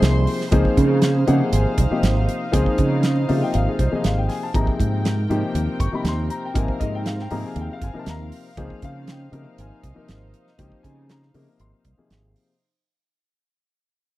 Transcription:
Already playing: grand piano C3 F3 A#3 D#4 G#4, string section C5 C6
0.02 fretless electric bass C2, snare, closed hi-hat
0.27 open hi-hat
0.41 snare
0.51 fretless electric bass C#2, grand piano F3 A#3 C4 D#4 G#4, string section D#4 F5, kick, closed hi-hat
0.65 kick
0.77 fretless electric bass C#3, kick, closed hi-hat
1.02 snare, closed hi-hat
1.26 grand piano C3 F3 A#3 D#4 G#4 F#5, fretless electric bass C#3, closed hi-hat
1.52 fretless electric bass G#1, grand piano G#5, closed hi-hat
1.78 fretless electric bass C2, kick, closed hi-hat
1.91 grand piano C3 F3 A#3 D#4 G4, muted fretless electric bass stroke
2.03 fretless electric bass G#1, snare, closed hi-hat
2.29 closed hi-hat
2.52 fretless electric bass C#2, grand piano F3 A#3 C4 D#4 G#4, kick, closed hi-hat
2.66 kick
2.78 fretless electric bass C#3, kick, closed hi-hat
3.03 snare, closed hi-hat
3.28 grand piano C3 F3 A#3 D#4 F4, fretless electric bass C#3, open hi-hat
3.43 grand piano G5
3.54 fretless electric bass G#1, grand piano F5, closed hi-hat
3.69 grand piano G#4
3.79 fretless electric bass C2, grand piano C5, kick, closed hi-hat
3.91 grand piano C3 F3 A#3 D#4 G#4 D#5, muted fretless electric bass stroke
4.04 fretless electric bass G#1, grand piano F5, snare, closed hi-hat
4.18 grand piano G5
4.29 grand piano G#5, snare, open hi-hat
4.43 grand piano A5
4.52 fretless electric bass G#1, grand piano C3 F3 A#3 D#4 G#4 A#5, string section C4 A#4 G5, kick, closed hi-hat
4.67 kick
4.79 fretless electric bass G#2, kick, closed hi-hat
5.05 snare, closed hi-hat
5.29 fretless electric bass G#2, grand piano C3 F3 A#3 D#4 G4, closed hi-hat
5.54 fretless electric bass D#2, closed hi-hat
5.80 fretless electric bass G1, grand piano C#6, kick, closed hi-hat
5.92 grand piano C3 F3 A#3 D#4 G4 B5
6.04 fretless electric bass D#2, snare, closed hi-hat
6.08 grand piano C6
6.30 grand piano A#5, closed hi-hat
6.45 grand piano G5
6.54 fretless electric bass G#1, grand piano C3 F3 A#3 D#4 A#4 G#5, string section F5, kick, closed hi-hat
6.68 grand piano C5, kick
6.80 fretless electric bass G#2, grand piano D#5, kick, closed hi-hat
6.95 grand piano G5
7.06 grand piano F5, snare, closed hi-hat
7.19 grand piano G5, snare
7.31 fretless electric bass G#2, grand piano C3 F3 A#3 D#4 G#4 A#5, open hi-hat
7.46 grand piano G#5
7.56 fretless electric bass D#2, closed hi-hat
7.60 grand piano G5
7.73 grand piano F5
7.81 fretless electric bass G1, grand piano G#5, kick, closed hi-hat
7.94 grand piano C3 F3 A#3 D#4 A#4
7.99 grand piano A5
8.06 fretless electric bass D#2, grand piano A#5, snare, closed hi-hat
8.32 open hi-hat
8.57 fretless electric bass C#2, grand piano F3 A#3 C4 D#4 G#4, string section D#4 C5, kick, closed hi-hat
8.70 kick
8.82 fretless electric bass C#3, grand piano F5, kick, closed hi-hat
9.07 grand piano G5, snare, closed hi-hat
9.31 grand piano C3 F3 A#3 D#4 A#4, fretless electric bass C#3, closed hi-hat
9.58 fretless electric bass G#1, grand piano G#5, closed hi-hat
9.83 fretless electric bass C2, kick, closed hi-hat
9.94 grand piano C3 F3 A#3 D#4 A#4
10.08 fretless electric bass G#1, snare, closed hi-hat
10.34 closed hi-hat
10.47 snare
10.58 fretless electric bass C#2, grand piano F3 A#3 C4 D#4 G4, kick, closed hi-hat
10.72 kick
10.83 fretless electric bass C#3, grand piano G#5, kick, closed hi-hat
11.09 grand piano A#5, snare, closed hi-hat
11.22 snare
11.34 grand piano C3 F3 A#3 D#4 A#4, fretless electric bass C#3, open hi-hat
11.59 fretless electric bass G#1, grand piano C6, closed hi-hat
11.85 fretless electric bass C2, kick, closed hi-hat
11.97 grand piano C3 F3 A#3 D#4 G#4
12.10 fretless electric bass G#1, snare, closed hi-hat
12.36 open hi-hat

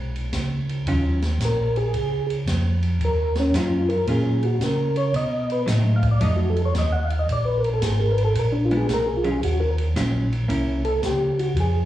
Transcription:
Already playing: tonewheel organ B1, hollow-body jazz guitar G#3 B3 F#4 A#4
0.16 ride
0.33 tonewheel organ C#2, kick, snare, hi-hat pedal, ride
0.69 ride
0.87 tonewheel organ D#2, hollow-body jazz guitar D#3 F#3 C#4 F4, kick, ride
1.22 snare, ride
1.40 tonewheel organ A#1, kick, snare, hi-hat pedal, ride
1.45 tonewheel organ A#4
1.76 tonewheel organ G#4, ride
1.93 tonewheel organ C#2, kick, ride
2.30 ride
2.47 tonewheel organ F2, kick, snare, hi-hat pedal, ride
2.82 ride
3.00 tonewheel organ D#2, kick, ride
3.05 tonewheel organ A#4
3.35 snare, ride
3.39 tonewheel organ C#4
3.54 tonewheel organ F#2 F4, hollow-body jazz guitar D#3 F#3 C#4 F4, kick, snare, hi-hat pedal, ride
3.89 tonewheel organ A#4, ride
4.07 tonewheel organ A#2 G#4, hollow-body jazz guitar D#3 F#3 C#4 F4, kick, ride
4.43 tonewheel organ F#4, ride
4.60 tonewheel organ C#3 A#4, kick, snare, hi-hat pedal, ride
4.96 tonewheel organ C#5, ride
5.14 tonewheel organ B2 D#5, kick, ride
5.50 tonewheel organ B4, ride
5.66 tonewheel organ A2, hollow-body jazz guitar F#3 A3 D#4, kick, snare, hi-hat pedal, ride
5.96 tonewheel organ F5
6.03 kick, ride
6.11 tonewheel organ D5
6.20 tonewheel organ F2 D#5, hollow-body jazz guitar F#3 A3 D#4, kick, ride
6.36 tonewheel organ F#4
6.50 tonewheel organ A4
6.56 ride
6.65 tonewheel organ C#5
6.74 tonewheel organ D#2, kick, snare, hi-hat pedal, ride
6.78 tonewheel organ D#5
6.92 tonewheel organ F#5
7.04 tonewheel organ F5
7.10 ride
7.19 tonewheel organ D#5
7.28 tonewheel organ A#1, kick, ride
7.32 tonewheel organ D5
7.45 tonewheel organ B4
7.58 tonewheel organ A#4
7.64 ride
7.74 tonewheel organ A4
7.82 tonewheel organ G#1 G#4, kick, snare, hi-hat pedal, ride
7.99 tonewheel organ A#4
8.11 tonewheel organ B4
8.18 ride
8.25 tonewheel organ A4
8.35 tonewheel organ A#1, kick, ride
8.39 tonewheel organ A#4
8.52 tonewheel organ D4
8.65 tonewheel organ F4
8.71 hollow-body jazz guitar G#3 B3 D4, ride
8.77 tonewheel organ G#4
8.89 tonewheel organ B1, kick, snare, hi-hat pedal, ride
8.94 tonewheel organ A#4
9.06 tonewheel organ G#4
9.17 tonewheel organ F4
9.24 hollow-body jazz guitar D#3 F#3 C#4 F4, ride
9.32 tonewheel organ G#4
9.42 tonewheel organ D#2 F#4, kick, ride
9.60 tonewheel organ A#4
9.78 ride
9.96 tonewheel organ A#1, hollow-body jazz guitar D#3 F#3 C#4 F4, kick, snare, hi-hat pedal, ride
10.32 ride
10.48 tonewheel organ C2, hollow-body jazz guitar A#3 C#4 E4, kick, ride
10.85 tonewheel organ A4, ride
11.02 tonewheel organ C#2 G4, kick, snare, hi-hat pedal, ride
11.39 tonewheel organ F#4, ride
11.56 tonewheel organ F2, kick, ride
11.60 tonewheel organ G#4

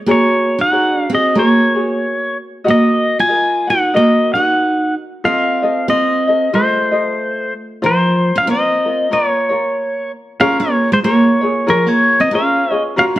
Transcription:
0.06 steel-string acoustic guitar A#3, ukulele F#4 G#4 A#4 C#5
0.11 pedal steel guitar C#5
0.58 steel-string acoustic guitar D#4, pedal steel guitar F#5
0.71 ukulele F#4 G#4 A#4 C#5
0.94 steel-string acoustic guitar D4
0.99 pedal steel guitar F5
1.10 steel-string acoustic guitar C4, ukulele F#4 G#4
1.15 pedal steel guitar D#5
1.35 steel-string acoustic guitar A#3, ukulele F#4 G#4 A#4 C#5, pedal steel guitar C#5
1.75 ukulele F#4 G#4 C#5
2.64 steel-string acoustic guitar A#3, ukulele F#4 A#4 D#5 F#5
2.71 pedal steel guitar D#5
3.19 steel-string acoustic guitar F4, pedal steel guitar G#5
3.28 ukulele A#4 D#5
3.67 steel-string acoustic guitar D#4, ukulele F#4 A#4 F#5, pedal steel guitar F#5
3.94 steel-string acoustic guitar A#3, ukulele F#4 A#4 D#5 F#5, pedal steel guitar D#5
4.33 steel-string acoustic guitar D#4, ukulele F#4 A#4 F#5, pedal steel guitar F#5
5.24 steel-string acoustic guitar C4, ukulele F4 A4 C5 D#5, pedal steel guitar F5
5.62 ukulele F4 A4 D#5
5.88 steel-string acoustic guitar C4, ukulele F4 A4 C5 D#5, pedal steel guitar D#5
6.27 ukulele F4 A4 D#5
6.53 steel-string acoustic guitar A3, ukulele F4 A4 C5 D#5, pedal steel guitar C5
6.92 ukulele F4 A4 D#5
7.82 steel-string acoustic guitar F3, ukulele F4 A#4 C5
7.86 pedal steel guitar C5
8.36 steel-string acoustic guitar C#4, pedal steel guitar F5
8.46 steel-string acoustic guitar C4, ukulele F4 A#4 C5
8.51 pedal steel guitar D#5
8.85 ukulele F4 A#4
9.11 steel-string acoustic guitar A#3, ukulele F4 A#4 C#5, pedal steel guitar C#5
9.49 ukulele F4 A#4 C#5
10.40 steel-string acoustic guitar C#4, ukulele F4 G#4 A#4 C#5, pedal steel guitar F5
10.60 steel-string acoustic guitar A#3, pedal steel guitar C#5
10.92 steel-string acoustic guitar G#3, pedal steel guitar C5
11.04 steel-string acoustic guitar A#3, ukulele F4 G#4 A#4 C#5, pedal steel guitar C#5
11.41 ukulele F4 G#4 C#5
11.67 steel-string acoustic guitar F3, ukulele F4 G#4 A#4 C#5, pedal steel guitar A#4
11.86 steel-string acoustic guitar A#3, pedal steel guitar C#5
12.20 steel-string acoustic guitar C4, pedal steel guitar D#5
12.31 steel-string acoustic guitar C#4, ukulele F4 G#4 A#4 C#5
12.35 pedal steel guitar F5
12.71 ukulele F4 G#4 C#5
12.96 steel-string acoustic guitar C#4, ukulele F4 F#4 A#4 C#5, pedal steel guitar F5
13.16 steel-string acoustic guitar A#3

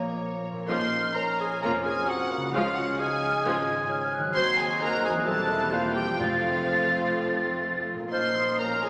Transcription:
Already playing: double bass section A#1, french horn section A#2, cello section A#2, harp A#2 F3 A#3 A#4, bassoon A#3, viola section A#3, clarinet A#3, flute section C#5, violin section A#5
0.00 violin section C#5
0.06 harp C#5
0.22 harp A#4
0.38 harp C#5
0.52 harp A#2 A#4
0.56 harp A#3
0.61 harp A#4
0.65 viola section F3 A#3, french horn section F3 C#4, violin section C#4 F4 C6, bassoon D#4, clarinet C5, harp C#5
0.69 double bass section A#1, cello section A#2, flute section F6
1.16 bassoon C#4, clarinet A#4, violin section A#5, flute section F6
1.39 clarinet G#4, violin section G#5
1.62 double bass section F1, cello section F2, viola section F3 A#3, violin section C#4 F4 A#5, clarinet A#4
1.84 clarinet G#4, violin section G#5
2.08 bassoon C4, clarinet F#4, violin section F#5, flute section D#6
2.31 bassoon A#3
2.37 harp C#3
2.41 harp G#3
2.46 harp F4
2.50 cello section C#2, viola section F3 G#3, bassoon C#4, violin section C#4 F4 F5, clarinet F4, harp C#5, flute section F6
2.55 double bass section C#2
2.76 clarinet F#4, violin section F#5
2.99 bassoon D#4, clarinet G#4, violin section G#5, flute section F6
3.45 double bass section G#1, cello section G#2, viola section F3 G#3, violin section C#4 F4, flute section G#6
3.89 bassoon C#4, flute section F6
4.13 flute section F#6
4.18 harp D#3
4.23 harp F#3
4.27 harp F#4
4.32 viola section F#3, french horn section F#3 C4, bassoon C4, violin section C4 D#4 C6, harp C5, flute section G#6
4.36 double bass section D#2, cello section D#2, clarinet C5
4.58 clarinet G#4, violin section G#5
4.81 bassoon D#4, clarinet A#4, violin section A#5, flute section F#6
5.04 clarinet G#4, violin section G#5
5.09 harp E3
5.13 harp A#3
5.18 harp G4
5.22 harp C5, violin section A5
5.27 double bass section E1, cello section E2, viola section G3 A#3, french horn section A#3 C4, bassoon C4, violin section C4, clarinet A4
5.49 bassoon E4
5.72 bassoon D4, clarinet F4, violin section F5, flute section G6
5.96 clarinet G4, violin section G5
6.01 harp F3
6.06 harp A3
6.10 harp F4
6.15 violin section C4, harp C5
6.19 double bass section F1, cello section F2, timpani F2, viola section F3 A3, french horn section A3 C4, bassoon C4, violin section F4 F5, clarinet F4, flute section A6
7.94 harp A#2
7.99 harp A#3
8.04 harp F4
8.08 viola section F3 A#3, bassoon D#4, harp C#5, violin section C6
8.12 double bass section A#1, cello section A#2, french horn section F3 C#4, violin section C#4 F4, clarinet C5, flute section F6
8.36 flute section D#6
8.59 bassoon C#4, clarinet A#4, violin section A#5, flute section F6
8.83 clarinet G#4, violin section G#5

